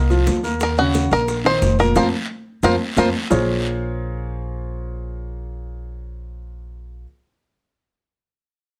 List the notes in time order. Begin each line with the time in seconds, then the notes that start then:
Already playing: C2 D#5
0.10 F3 F4, high bongo, high conga, maracas
0.27 D#2, high bongo, low bongo, high conga, short guiro, maracas
0.43 A#3 A#4, high bongo, short guiro, maracas
0.60 A#4, high bongo, high conga, long guiro, maracas
0.77 C#3 C#4 F#4, high conga, maracas
0.94 high bongo, high conga, short guiro, maracas
1.11 A#1 A#3 A#4, high conga, short guiro, maracas
1.28 high bongo, high conga, long guiro, maracas
1.44 D#3 D#4 C5, high conga, maracas
1.62 F1, high bongo, low bongo, high conga, short guiro, maracas
1.79 A#2 A#3 A#4, high conga, short guiro, maracas
1.95 F2 F3 A#3 C4 F4 A#4 C5, low bongo, high conga, long guiro, maracas
2.63 F2 F3 A#3 C4 F4 A#4 C5, low bongo, high conga, long guiro, maracas
2.96 F2 F3 A#3 C4 F4 A#4 C5, low bongo, high conga, long guiro, maracas
3.30 A#1 A#3 F4 G#4 A#4 C5 C#5, low bongo, low conga, maracas